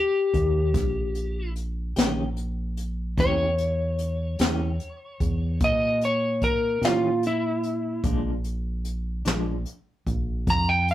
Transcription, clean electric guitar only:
1.96 D#3 A#3 C#4 G4
3.17 E3 A#3 C#4 G4
4.40 E3 A#3 C#4 G4
6.83 E3 A#3 C#4 G4
8.04 A#2 F3 G#3 D4
9.25 A#2 F3 G#3 D4

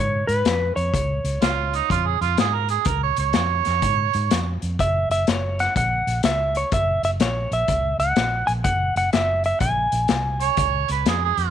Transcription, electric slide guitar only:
Already playing: C#5
0.27 B4
0.76 C#5
4.80 E5
5.11 E5
5.29 C#5
5.60 F#5
5.77 F#5
6.25 E5
6.57 C#5
6.74 E5
7.05 E5
7.21 C#5
7.53 E5
8.00 F#5
8.47 G#5
8.64 F#5
8.97 F#5
9.13 E5
9.46 E5
9.61 G#5

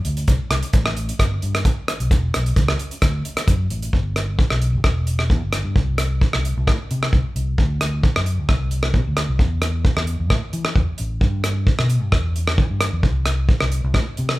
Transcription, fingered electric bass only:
0.05 D2
0.28 C2
0.50 C2
0.74 A1
1.19 G1
1.43 G2
2.00 B1
2.11 E1
2.35 B1
2.56 C#2
3.03 D2
3.48 F#2
3.70 A1
3.94 G1
4.51 B1
4.73 G1
4.84 E1
5.30 E2
5.43 G1
5.64 G2
5.76 C2
6.34 C2
6.57 C2
6.67 A2
6.91 C3
7.13 C2
7.36 C2
7.58 D2
8.16 F#2
8.39 D2
8.49 C2
8.94 C3
9.07 D2
9.29 C2
9.40 E2
9.97 E2
10.20 E2
10.30 A2
10.53 E3
10.76 E2
11.00 A1
11.21 G2
11.79 B2
12.02 G2
12.12 E2
12.58 E3
12.70 G2
12.93 E2
13.03 C2
13.61 C2
13.84 C2
13.94 A2
14.19 C3

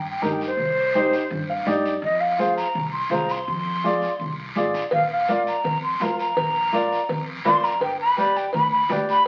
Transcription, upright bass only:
Already playing: G2
0.22 G2
0.57 C2
1.30 G2
1.66 G2
2.02 F2
2.75 C2
3.10 C2
3.48 F2
4.19 C2
4.56 G#1
4.74 A#1
4.92 A#1
5.64 F2
6.00 F2
6.37 A#1
7.09 F2
7.45 F2
7.81 G1
8.54 D2
8.89 D2

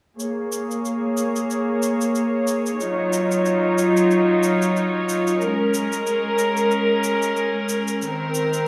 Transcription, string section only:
0.18 A#3 G#4 C#5
2.78 F#3 D#4 F4
5.40 G#3 C#4 A#4
8.01 D#3 C4 A#4

